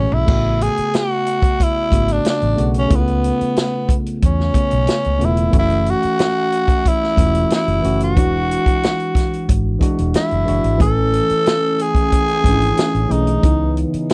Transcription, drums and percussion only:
0.12 floor tom medium
0.28 kick loud
0.28 crash medium
0.61 closed hi-hat medium
0.77 closed hi-hat soft
0.94 snare loud
0.94 closed hi-hat medium
1.26 closed hi-hat medium
1.42 kick medium
1.42 closed hi-hat soft
1.60 kick medium
1.60 closed hi-hat medium
1.92 kick medium
1.92 closed hi-hat medium
2.08 closed hi-hat soft
2.25 snare medium
2.25 closed hi-hat medium
2.41 closed hi-hat soft
2.58 closed hi-hat medium
2.74 closed hi-hat soft
2.90 kick loud
2.90 closed hi-hat medium
3.07 closed hi-hat soft
3.24 closed hi-hat medium
3.41 closed hi-hat soft
3.56 snare loud
3.56 closed hi-hat medium
3.89 kick medium
3.89 closed hi-hat medium
4.06 closed hi-hat soft
4.22 kick medium
4.22 closed hi-hat medium
4.40 snare soft
4.54 kick medium
4.54 closed hi-hat medium
4.71 closed hi-hat medium
4.87 snare medium
4.87 closed hi-hat medium
5.04 closed hi-hat soft
5.21 closed hi-hat medium
5.37 closed hi-hat medium
5.53 kick loud
5.53 closed hi-hat medium
5.70 closed hi-hat soft
5.86 closed hi-hat medium
6.03 closed hi-hat soft
6.19 snare loud
6.19 closed hi-hat medium
6.52 closed hi-hat medium
6.68 kick medium
6.68 closed hi-hat soft
6.86 kick medium
6.86 closed hi-hat medium
7.04 snare soft
7.17 kick medium
7.17 closed hi-hat medium
7.35 closed hi-hat soft
7.50 snare medium
7.50 closed hi-hat medium
7.68 closed hi-hat soft
7.84 closed hi-hat medium
8.00 closed hi-hat soft
8.17 kick loud
8.17 closed hi-hat medium
8.51 closed hi-hat medium
8.66 kick medium
8.66 closed hi-hat soft
8.83 snare loud
8.83 closed hi-hat medium
9.00 closed hi-hat soft
9.15 kick medium
9.15 snare soft
9.15 closed hi-hat medium
9.33 closed hi-hat soft
9.49 kick medium
9.49 closed hi-hat medium
9.81 kick medium
9.81 closed hi-hat medium
9.98 closed hi-hat soft
10.14 snare loud
10.14 closed hi-hat medium
10.31 closed hi-hat soft
10.48 closed hi-hat medium
10.64 closed hi-hat soft
10.80 kick loud
10.80 closed hi-hat medium
11.13 closed hi-hat medium
11.29 closed hi-hat soft
11.46 snare loud
11.46 closed hi-hat medium
11.79 closed hi-hat medium
11.95 kick medium
11.95 closed hi-hat soft
12.12 kick medium
12.12 closed hi-hat medium
12.28 closed hi-hat soft
12.44 kick medium
12.44 closed hi-hat medium
12.61 closed hi-hat soft
12.77 snare loud
12.77 closed hi-hat medium
12.95 closed hi-hat soft
13.11 closed hi-hat medium
13.27 closed hi-hat medium
13.43 kick loud
13.43 closed hi-hat medium
13.77 closed hi-hat medium
13.94 closed hi-hat soft
14.10 closed hi-hat medium

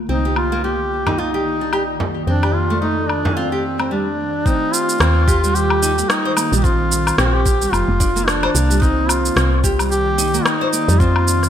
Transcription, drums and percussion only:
0.36 low woodblock medium
1.07 frame drum medium
1.07 low woodblock medium
1.73 low woodblock medium
2.00 frame drum medium
2.43 low woodblock medium
3.10 low woodblock medium
3.25 frame drum medium
3.80 low woodblock medium
4.46 kick loud
4.46 cabasa soft
4.74 cabasa medium
4.89 cabasa soft
5.00 cross-stick loud
5.00 cabasa soft
5.00 low woodblock medium
5.28 kick loud
5.28 cabasa medium
5.44 cabasa soft
5.55 cabasa soft
5.70 low woodblock medium
5.83 cabasa medium
5.99 cabasa soft
6.10 cross-stick loud
6.10 cabasa soft
6.37 cabasa medium
6.37 low woodblock medium
6.53 cabasa soft
6.64 kick loud
6.64 cabasa soft
6.92 cabasa medium
7.07 cross-stick soft
7.07 cabasa soft
7.07 low woodblock medium
7.18 cross-stick loud
7.18 cabasa soft
7.46 kick loud
7.46 cabasa medium
7.62 cabasa soft
7.73 cabasa soft
7.73 low woodblock medium
8.00 kick loud
8.00 cabasa medium
8.17 cabasa soft
8.28 cross-stick loud
8.28 cabasa soft
8.43 low woodblock medium
8.55 cabasa medium
8.71 cabasa soft
8.82 kick loud
8.82 cabasa soft
9.09 cabasa medium
9.09 low woodblock medium
9.26 cabasa soft
9.37 cross-stick loud
9.37 cabasa soft
9.64 kick loud
9.64 cabasa medium
9.79 cabasa soft
9.79 low woodblock medium
9.92 cabasa soft
10.19 cabasa medium
10.34 cabasa soft
10.46 cross-stick loud
10.46 cabasa soft
10.46 low woodblock medium
10.73 cabasa medium
10.89 cabasa soft
11.00 kick loud
11.00 cabasa soft
11.16 low woodblock medium
11.28 cabasa medium
11.43 cross-stick soft
11.43 cabasa soft

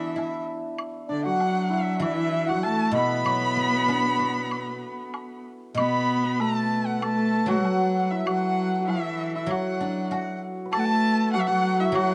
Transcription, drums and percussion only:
0.18 low woodblock soft
0.78 high woodblock medium
1.40 low woodblock soft
2.02 high woodblock medium
2.65 low woodblock soft
3.26 high woodblock medium
3.89 low woodblock medium
4.51 high woodblock medium
5.14 high woodblock soft
5.14 low woodblock soft
5.78 high woodblock medium
6.40 low woodblock soft
7.02 high woodblock medium
7.65 low woodblock soft
8.27 high woodblock medium
8.89 low woodblock medium
9.51 high woodblock medium
10.12 low woodblock soft
10.73 high woodblock medium
11.34 low woodblock medium
11.95 high woodblock medium

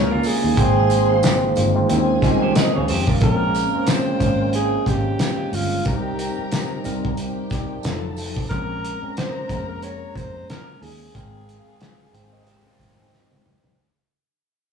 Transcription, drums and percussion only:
0.23 open hi-hat loud
0.23 tambourine medium
0.57 kick loud
0.57 closed hi-hat loud
0.90 closed hi-hat medium
0.90 tambourine medium
1.23 snare loud
1.23 closed hi-hat medium
1.23 tambourine medium
1.56 closed hi-hat medium
1.56 tambourine soft
1.89 closed hi-hat medium
1.89 tambourine medium
2.22 kick medium
2.22 snare soft
2.22 closed hi-hat medium
2.22 tambourine soft
2.56 snare loud
2.56 closed hi-hat medium
2.56 tambourine medium
2.88 open hi-hat medium
2.88 tambourine medium
3.07 kick loud
3.21 kick loud
3.21 closed hi-hat medium
3.54 closed hi-hat medium
3.54 tambourine medium
3.87 snare loud
3.87 closed hi-hat loud
3.87 tambourine loud
4.20 kick medium
4.20 closed hi-hat medium
4.20 tambourine soft
4.53 closed hi-hat medium
4.53 tambourine soft
4.86 kick medium
4.86 snare soft
4.86 closed hi-hat medium
4.86 tambourine soft
5.19 snare loud
5.19 closed hi-hat loud
5.19 tambourine medium
5.53 open hi-hat medium
5.53 tambourine medium
5.85 kick loud
5.85 closed hi-hat medium
5.85 tambourine soft
6.19 closed hi-hat medium
6.19 tambourine medium
6.52 snare loud
6.52 closed hi-hat loud
6.52 tambourine medium
6.84 closed hi-hat medium
6.84 tambourine soft
7.05 kick medium
7.17 closed hi-hat medium
7.17 tambourine soft
7.50 kick loud
7.50 snare soft
7.50 closed hi-hat medium
7.50 tambourine soft
7.83 snare loud
7.83 closed hi-hat medium
7.83 tambourine medium
8.17 open hi-hat medium
8.17 tambourine soft
8.37 kick loud
8.51 kick loud
8.51 closed hi-hat medium
8.85 closed hi-hat medium
9.17 snare loud
9.17 closed hi-hat medium
9.49 kick medium
9.49 closed hi-hat medium
9.82 closed hi-hat medium
10.16 kick medium
10.16 closed hi-hat medium
10.50 snare loud
10.50 closed hi-hat loud
10.83 open hi-hat medium
11.15 kick loud
11.15 closed hi-hat medium
11.49 closed hi-hat medium
11.81 snare loud
11.81 closed hi-hat medium
12.14 closed hi-hat medium
12.47 closed hi-hat medium
12.79 kick medium
12.79 closed hi-hat medium
13.13 snare medium
13.32 high tom medium
13.46 mid tom loud
13.64 floor tom medium

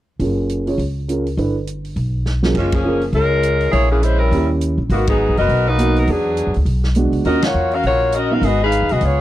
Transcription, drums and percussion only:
0.20 open hi-hat soft
0.49 closed hi-hat soft
0.67 open hi-hat soft
0.79 open hi-hat soft
1.09 closed hi-hat soft
1.26 open hi-hat soft
1.38 open hi-hat soft
1.67 closed hi-hat soft
1.85 open hi-hat soft
1.96 open hi-hat soft
2.26 snare soft
2.43 snare medium
2.55 kick medium
2.55 crash medium
2.72 kick medium
2.72 ride medium
3.01 open hi-hat soft
3.13 open hi-hat soft
3.43 closed hi-hat medium
3.60 open hi-hat soft
3.73 open hi-hat soft
4.03 closed hi-hat soft
4.32 open hi-hat soft
4.61 closed hi-hat soft
4.90 open hi-hat soft
5.07 kick medium
5.07 ride medium
5.37 open hi-hat soft
5.49 open hi-hat soft
5.79 closed hi-hat medium
5.96 open hi-hat soft
6.07 open hi-hat soft
6.37 closed hi-hat soft
6.54 open hi-hat soft
6.66 open hi-hat soft
6.84 snare soft
6.95 closed hi-hat soft
7.13 open hi-hat soft
7.25 open hi-hat soft
7.42 snare medium
7.42 ride medium
7.71 open hi-hat soft
7.83 open hi-hat soft
8.12 closed hi-hat soft
8.43 open hi-hat soft
8.72 closed hi-hat soft
8.89 open hi-hat soft
9.01 open hi-hat soft

